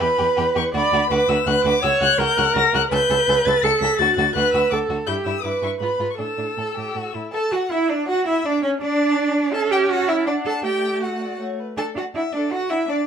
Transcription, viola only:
0.00 0.74 B4 medium
0.75 1.10 D5 loud
1.10 1.46 B4 medium
1.47 1.82 B4 loud
1.83 2.20 C#5 loud
2.19 2.90 A#4 loud
2.91 3.65 B4 loud
3.63 4.01 A4 loud
3.99 4.35 F#4 medium
4.36 4.74 B4 loud
4.72 5.09 A4 medium
5.07 5.43 G4 medium
5.43 5.80 B4 medium
5.80 6.18 B4 medium
6.18 7.12 A4 medium
7.33 7.53 A4 medium
7.51 7.72 F#4 medium
7.71 7.90 E4 medium
7.89 8.09 D4 medium
8.08 8.26 F#4 medium
8.27 8.45 E4 medium
8.45 8.52 D4 medium
8.62 8.81 C#4 medium
8.81 9.52 D4 medium
9.53 10.27 C#4 medium
10.25 10.65 D4 medium
10.64 11.39 A3 medium
11.39 11.58 A3 medium
11.77 11.84 D4 medium
11.95 12.02 D4 soft
12.14 12.22 D4 soft
12.34 12.41 D4 medium
12.71 12.78 D4 soft
12.87 12.95 D4 medium

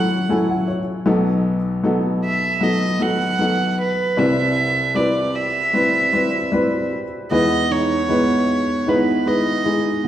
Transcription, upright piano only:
0.00 1.03 F#1 medium
0.00 1.03 F#2 medium
0.00 0.29 F#3 medium
0.00 0.30 C#4 medium
0.00 0.30 E4 medium
0.00 0.31 A4 medium
0.29 0.78 F#3 medium
0.29 0.79 C#4 medium
0.29 0.79 E4 medium
0.29 0.79 A4 medium
0.29 0.48 G#5 medium
0.49 0.67 F#5 medium
0.68 1.04 C#5 medium
1.06 4.13 B1 medium
1.06 4.13 B2 medium
1.06 1.55 F#3 medium
1.06 1.55 B3 medium
1.06 1.56 D#4 medium
1.06 1.56 A4 medium
1.83 2.33 F#3 medium
1.83 2.33 B3 medium
1.83 2.33 D#4 medium
1.83 2.34 A4 medium
2.61 2.86 F#3 medium
2.61 2.86 B3 medium
2.61 2.86 D#4 medium
2.61 2.86 A4 medium
2.99 3.25 F#3 medium
2.99 3.25 B3 soft
2.99 3.25 D#4 soft
2.99 3.25 A4 medium
3.39 3.88 F#3 medium
3.39 3.89 B3 soft
3.39 3.89 D#4 soft
3.39 3.89 A4 medium
4.17 7.28 C2 soft
4.17 7.28 C3 soft
4.17 4.67 G3 medium
4.17 4.67 C4 medium
4.17 4.67 E4 medium
4.17 4.67 B4 medium
4.94 5.45 G3 medium
4.94 5.45 C4 soft
4.94 5.45 E4 soft
4.94 5.45 B4 medium
5.73 5.98 G3 medium
5.73 5.99 C4 soft
5.73 5.99 E4 soft
5.73 5.99 B4 medium
6.13 6.38 G3 medium
6.13 6.38 C4 soft
6.13 6.38 E4 soft
6.13 6.39 B4 medium
6.52 7.02 G3 medium
6.52 7.03 C4 medium
6.52 7.03 E4 medium
6.52 7.03 B4 medium
7.31 10.08 E2 soft
7.31 10.08 E3 soft
7.31 7.81 G#3 medium
7.31 7.81 D#4 medium
7.31 7.81 E4 medium
7.31 7.81 B4 medium
8.08 8.58 G#3 medium
8.08 8.58 D#4 soft
8.08 8.59 E4 soft
8.08 8.59 B4 medium
8.86 9.12 G#3 medium
8.86 9.12 D#4 medium
8.86 9.12 E4 medium
8.86 9.12 B4 medium
9.26 9.51 G#3 medium
9.26 9.51 D#4 soft
9.26 9.51 E4 soft
9.26 9.51 B4 medium
9.64 10.08 G#3 medium
9.64 10.08 D#4 soft
9.64 10.08 E4 soft
9.64 10.08 G#4 medium

